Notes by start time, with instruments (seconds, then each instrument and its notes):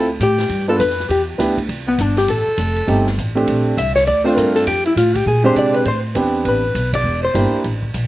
Already playing: upright bass D2
0.20 upright bass A2, alto saxophone G4, hollow-body jazz guitar G4, kick, hi-hat pedal, ride
0.38 snare, ride
0.49 upright bass G2, kick, ride
0.68 grand piano B3 D4 F4 A4, alto saxophone A4, hollow-body jazz guitar A4
0.79 upright bass F2, hollow-body jazz guitar B4, alto saxophone B4, kick, hi-hat pedal, ride
0.90 snare
0.98 snare, ride
1.09 upright bass E2, alto saxophone G4, hollow-body jazz guitar G4, kick, ride
1.38 upright bass D2, grand piano B3 D4 E4 G4, kick, hi-hat pedal, ride
1.58 kick, ride
1.69 upright bass C2, kick, ride
1.87 alto saxophone B3, hollow-body jazz guitar B3
1.98 upright bass G1, alto saxophone D4, hollow-body jazz guitar D4, kick, hi-hat pedal, ride
2.17 hollow-body jazz guitar G4, alto saxophone G4, snare, ride
2.28 upright bass A1, alto saxophone A4, hollow-body jazz guitar A4, kick, ride
2.47 muted upright bass stroke
2.58 upright bass F1, kick, hi-hat pedal, ride
2.76 ride
2.87 upright bass G1, grand piano A3 C4 D#4 G4, kick, ride
3.07 snare
3.18 upright bass A1, hi-hat pedal, ride
3.35 grand piano A3 C4 D4 G4, ride
3.47 upright bass A#1, kick, ride
3.77 upright bass C2, alto saxophone E5, hollow-body jazz guitar E5, kick, hi-hat pedal, ride
3.95 alto saxophone C#5, hollow-body jazz guitar C#5, snare, ride
4.06 upright bass D2, alto saxophone D5, hollow-body jazz guitar D5, kick, ride
4.24 grand piano A3 C4 D4 F4, alto saxophone C5, hollow-body jazz guitar C5, snare
4.37 upright bass G2, alto saxophone A#4, hollow-body jazz guitar A#4, kick, hi-hat pedal, ride
4.55 alto saxophone A4, hollow-body jazz guitar A4, snare, ride
4.66 upright bass F2, alto saxophone G4, hollow-body jazz guitar G4, kick, ride
4.86 alto saxophone E4, hollow-body jazz guitar E4, ride
4.96 upright bass A2, hollow-body jazz guitar F4, alto saxophone F4, kick, hi-hat pedal, ride
5.15 alto saxophone G4, hollow-body jazz guitar G4, kick, ride
5.26 upright bass A#2, alto saxophone G#4, hollow-body jazz guitar G#4, kick
5.44 grand piano G#3 C4 D4 G4, alto saxophone C5, hollow-body jazz guitar C5
5.56 upright bass C3, alto saxophone D5, hollow-body jazz guitar D5, kick, hi-hat pedal, ride
5.73 alto saxophone B4, hollow-body jazz guitar B4, ride
5.85 upright bass A2, alto saxophone C5, hollow-body jazz guitar C5, kick, ride
6.15 upright bass E2, grand piano B3 C4 D4 G4, kick, hi-hat pedal, ride
6.45 upright bass A1, alto saxophone B4, hollow-body jazz guitar B4, kick, ride
6.75 upright bass B1, kick, hi-hat pedal, ride
6.93 alto saxophone D5, hollow-body jazz guitar D5, kick, ride
7.04 upright bass E1
7.23 alto saxophone C5, hollow-body jazz guitar C5
7.34 upright bass G1, grand piano A#3 D4 E4 G4, kick, hi-hat pedal, ride
7.53 muted upright bass stroke
7.64 upright bass A1, kick, ride
7.83 kick
7.94 upright bass A#1, kick, hi-hat pedal, ride